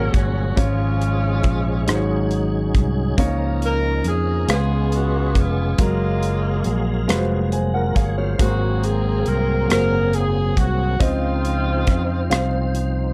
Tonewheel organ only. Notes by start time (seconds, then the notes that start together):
Already playing: F#3 A#3 C#4 G#4
0.57 F3 G#3 C#4 G#4
1.86 F#3 C#4 D#4 G#4
3.17 F3 C#4 D#4 A#4
4.48 G#3 B3 C#4 G#4
5.79 F#3 A#3 G#4 F5
7.74 F4 A#4
7.95 G#4 C#5
8.18 C5 F5
8.39 F#3 A#3 C4 G#4
11.00 F3 C4 D#4 C5